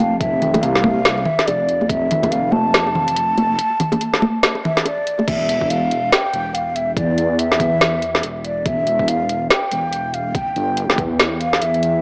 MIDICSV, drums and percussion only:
0, 0, Header, 1, 2, 480
1, 0, Start_track
1, 0, Tempo, 422535
1, 235, Time_signature, 4, 2, 24, 8
1, 13650, End_track
2, 0, Start_track
2, 0, Title_t, "Drums"
2, 234, Note_on_c, 9, 36, 118
2, 236, Note_on_c, 9, 42, 76
2, 347, Note_off_c, 9, 36, 0
2, 349, Note_off_c, 9, 42, 0
2, 476, Note_on_c, 9, 42, 50
2, 477, Note_on_c, 9, 64, 79
2, 590, Note_off_c, 9, 42, 0
2, 591, Note_off_c, 9, 64, 0
2, 615, Note_on_c, 9, 60, 69
2, 619, Note_on_c, 9, 42, 51
2, 622, Note_on_c, 9, 63, 66
2, 625, Note_on_c, 9, 64, 82
2, 715, Note_off_c, 9, 42, 0
2, 715, Note_on_c, 9, 42, 78
2, 729, Note_off_c, 9, 60, 0
2, 736, Note_off_c, 9, 63, 0
2, 739, Note_off_c, 9, 64, 0
2, 829, Note_off_c, 9, 42, 0
2, 858, Note_on_c, 9, 38, 36
2, 953, Note_on_c, 9, 36, 101
2, 953, Note_on_c, 9, 63, 94
2, 972, Note_off_c, 9, 38, 0
2, 1066, Note_off_c, 9, 63, 0
2, 1067, Note_off_c, 9, 36, 0
2, 1194, Note_on_c, 9, 38, 116
2, 1194, Note_on_c, 9, 42, 75
2, 1308, Note_off_c, 9, 38, 0
2, 1308, Note_off_c, 9, 42, 0
2, 1337, Note_on_c, 9, 60, 38
2, 1425, Note_on_c, 9, 64, 88
2, 1451, Note_off_c, 9, 60, 0
2, 1538, Note_off_c, 9, 64, 0
2, 1577, Note_on_c, 9, 38, 36
2, 1577, Note_on_c, 9, 42, 51
2, 1676, Note_off_c, 9, 42, 0
2, 1676, Note_on_c, 9, 42, 78
2, 1680, Note_on_c, 9, 60, 49
2, 1691, Note_off_c, 9, 38, 0
2, 1790, Note_off_c, 9, 42, 0
2, 1794, Note_off_c, 9, 60, 0
2, 1915, Note_on_c, 9, 42, 51
2, 2029, Note_off_c, 9, 42, 0
2, 2057, Note_on_c, 9, 63, 60
2, 2062, Note_on_c, 9, 60, 33
2, 2152, Note_on_c, 9, 36, 115
2, 2154, Note_on_c, 9, 42, 82
2, 2170, Note_off_c, 9, 63, 0
2, 2176, Note_off_c, 9, 60, 0
2, 2265, Note_off_c, 9, 36, 0
2, 2268, Note_off_c, 9, 42, 0
2, 2394, Note_on_c, 9, 42, 54
2, 2403, Note_on_c, 9, 64, 90
2, 2507, Note_off_c, 9, 42, 0
2, 2516, Note_off_c, 9, 64, 0
2, 2534, Note_on_c, 9, 36, 57
2, 2534, Note_on_c, 9, 63, 61
2, 2536, Note_on_c, 9, 42, 53
2, 2541, Note_on_c, 9, 64, 80
2, 2542, Note_on_c, 9, 60, 65
2, 2634, Note_off_c, 9, 42, 0
2, 2634, Note_on_c, 9, 42, 79
2, 2648, Note_off_c, 9, 36, 0
2, 2648, Note_off_c, 9, 63, 0
2, 2655, Note_off_c, 9, 60, 0
2, 2655, Note_off_c, 9, 64, 0
2, 2747, Note_off_c, 9, 42, 0
2, 2865, Note_on_c, 9, 63, 84
2, 2978, Note_off_c, 9, 63, 0
2, 3114, Note_on_c, 9, 38, 110
2, 3114, Note_on_c, 9, 42, 75
2, 3228, Note_off_c, 9, 38, 0
2, 3228, Note_off_c, 9, 42, 0
2, 3258, Note_on_c, 9, 60, 37
2, 3353, Note_on_c, 9, 64, 84
2, 3371, Note_off_c, 9, 60, 0
2, 3467, Note_off_c, 9, 64, 0
2, 3497, Note_on_c, 9, 42, 55
2, 3595, Note_off_c, 9, 42, 0
2, 3595, Note_on_c, 9, 42, 79
2, 3708, Note_off_c, 9, 42, 0
2, 3836, Note_on_c, 9, 42, 53
2, 3836, Note_on_c, 9, 63, 76
2, 3949, Note_off_c, 9, 42, 0
2, 3950, Note_off_c, 9, 63, 0
2, 4076, Note_on_c, 9, 42, 88
2, 4189, Note_off_c, 9, 42, 0
2, 4316, Note_on_c, 9, 42, 56
2, 4317, Note_on_c, 9, 64, 91
2, 4429, Note_off_c, 9, 42, 0
2, 4430, Note_off_c, 9, 64, 0
2, 4451, Note_on_c, 9, 60, 72
2, 4454, Note_on_c, 9, 64, 79
2, 4458, Note_on_c, 9, 63, 58
2, 4459, Note_on_c, 9, 42, 55
2, 4556, Note_off_c, 9, 42, 0
2, 4556, Note_on_c, 9, 42, 81
2, 4565, Note_off_c, 9, 60, 0
2, 4568, Note_off_c, 9, 64, 0
2, 4572, Note_off_c, 9, 63, 0
2, 4670, Note_off_c, 9, 42, 0
2, 4699, Note_on_c, 9, 38, 36
2, 4796, Note_on_c, 9, 63, 98
2, 4813, Note_off_c, 9, 38, 0
2, 4910, Note_off_c, 9, 63, 0
2, 5036, Note_on_c, 9, 38, 111
2, 5036, Note_on_c, 9, 42, 81
2, 5149, Note_off_c, 9, 38, 0
2, 5149, Note_off_c, 9, 42, 0
2, 5171, Note_on_c, 9, 60, 37
2, 5284, Note_off_c, 9, 60, 0
2, 5284, Note_on_c, 9, 64, 96
2, 5398, Note_off_c, 9, 64, 0
2, 5418, Note_on_c, 9, 38, 37
2, 5418, Note_on_c, 9, 42, 56
2, 5513, Note_on_c, 9, 60, 51
2, 5516, Note_off_c, 9, 42, 0
2, 5516, Note_on_c, 9, 42, 85
2, 5532, Note_off_c, 9, 38, 0
2, 5627, Note_off_c, 9, 60, 0
2, 5630, Note_off_c, 9, 42, 0
2, 5758, Note_on_c, 9, 42, 56
2, 5872, Note_off_c, 9, 42, 0
2, 5894, Note_on_c, 9, 60, 41
2, 5902, Note_on_c, 9, 63, 57
2, 5995, Note_on_c, 9, 36, 119
2, 5996, Note_on_c, 9, 42, 87
2, 5996, Note_on_c, 9, 49, 113
2, 6008, Note_off_c, 9, 60, 0
2, 6015, Note_off_c, 9, 63, 0
2, 6108, Note_off_c, 9, 36, 0
2, 6110, Note_off_c, 9, 42, 0
2, 6110, Note_off_c, 9, 49, 0
2, 6237, Note_on_c, 9, 42, 64
2, 6351, Note_off_c, 9, 42, 0
2, 6377, Note_on_c, 9, 36, 60
2, 6478, Note_on_c, 9, 42, 85
2, 6491, Note_off_c, 9, 36, 0
2, 6592, Note_off_c, 9, 42, 0
2, 6717, Note_on_c, 9, 42, 55
2, 6831, Note_off_c, 9, 42, 0
2, 6958, Note_on_c, 9, 38, 121
2, 6958, Note_on_c, 9, 42, 83
2, 7071, Note_off_c, 9, 38, 0
2, 7071, Note_off_c, 9, 42, 0
2, 7196, Note_on_c, 9, 42, 58
2, 7310, Note_off_c, 9, 42, 0
2, 7436, Note_on_c, 9, 42, 84
2, 7550, Note_off_c, 9, 42, 0
2, 7676, Note_on_c, 9, 42, 58
2, 7790, Note_off_c, 9, 42, 0
2, 7913, Note_on_c, 9, 36, 127
2, 7916, Note_on_c, 9, 42, 86
2, 8027, Note_off_c, 9, 36, 0
2, 8030, Note_off_c, 9, 42, 0
2, 8155, Note_on_c, 9, 42, 65
2, 8269, Note_off_c, 9, 42, 0
2, 8396, Note_on_c, 9, 42, 88
2, 8510, Note_off_c, 9, 42, 0
2, 8539, Note_on_c, 9, 38, 39
2, 8633, Note_on_c, 9, 36, 107
2, 8636, Note_on_c, 9, 42, 59
2, 8652, Note_off_c, 9, 38, 0
2, 8747, Note_off_c, 9, 36, 0
2, 8749, Note_off_c, 9, 42, 0
2, 8875, Note_on_c, 9, 38, 123
2, 8875, Note_on_c, 9, 42, 83
2, 8989, Note_off_c, 9, 38, 0
2, 8989, Note_off_c, 9, 42, 0
2, 9115, Note_on_c, 9, 42, 60
2, 9229, Note_off_c, 9, 42, 0
2, 9258, Note_on_c, 9, 38, 39
2, 9354, Note_on_c, 9, 42, 85
2, 9371, Note_off_c, 9, 38, 0
2, 9468, Note_off_c, 9, 42, 0
2, 9594, Note_on_c, 9, 42, 57
2, 9708, Note_off_c, 9, 42, 0
2, 9833, Note_on_c, 9, 42, 87
2, 9834, Note_on_c, 9, 36, 125
2, 9947, Note_off_c, 9, 36, 0
2, 9947, Note_off_c, 9, 42, 0
2, 10073, Note_on_c, 9, 42, 63
2, 10187, Note_off_c, 9, 42, 0
2, 10216, Note_on_c, 9, 36, 64
2, 10314, Note_on_c, 9, 42, 85
2, 10330, Note_off_c, 9, 36, 0
2, 10427, Note_off_c, 9, 42, 0
2, 10555, Note_on_c, 9, 42, 55
2, 10668, Note_off_c, 9, 42, 0
2, 10795, Note_on_c, 9, 38, 124
2, 10795, Note_on_c, 9, 42, 83
2, 10909, Note_off_c, 9, 38, 0
2, 10909, Note_off_c, 9, 42, 0
2, 11034, Note_on_c, 9, 42, 60
2, 11148, Note_off_c, 9, 42, 0
2, 11275, Note_on_c, 9, 42, 81
2, 11389, Note_off_c, 9, 42, 0
2, 11515, Note_on_c, 9, 42, 54
2, 11629, Note_off_c, 9, 42, 0
2, 11753, Note_on_c, 9, 36, 126
2, 11755, Note_on_c, 9, 42, 83
2, 11866, Note_off_c, 9, 36, 0
2, 11869, Note_off_c, 9, 42, 0
2, 11995, Note_on_c, 9, 42, 61
2, 12108, Note_off_c, 9, 42, 0
2, 12235, Note_on_c, 9, 42, 80
2, 12348, Note_off_c, 9, 42, 0
2, 12378, Note_on_c, 9, 38, 40
2, 12473, Note_on_c, 9, 36, 109
2, 12476, Note_on_c, 9, 42, 55
2, 12491, Note_off_c, 9, 38, 0
2, 12587, Note_off_c, 9, 36, 0
2, 12590, Note_off_c, 9, 42, 0
2, 12716, Note_on_c, 9, 38, 121
2, 12716, Note_on_c, 9, 42, 78
2, 12830, Note_off_c, 9, 38, 0
2, 12830, Note_off_c, 9, 42, 0
2, 12956, Note_on_c, 9, 42, 56
2, 13069, Note_off_c, 9, 42, 0
2, 13099, Note_on_c, 9, 38, 38
2, 13195, Note_on_c, 9, 42, 80
2, 13212, Note_off_c, 9, 38, 0
2, 13309, Note_off_c, 9, 42, 0
2, 13339, Note_on_c, 9, 42, 37
2, 13437, Note_off_c, 9, 42, 0
2, 13437, Note_on_c, 9, 42, 54
2, 13550, Note_off_c, 9, 42, 0
2, 13650, End_track
0, 0, End_of_file